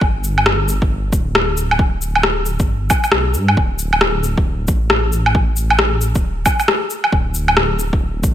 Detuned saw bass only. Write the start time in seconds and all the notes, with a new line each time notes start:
0.02 G1
0.82 G1
1.13 D1
1.56 D1
2.60 G1
3.12 B1
3.35 G2
3.57 D1
4.37 D1
4.68 A1
5.13 A1
6.15 D1
7.13 D1
7.93 D1
8.24 A1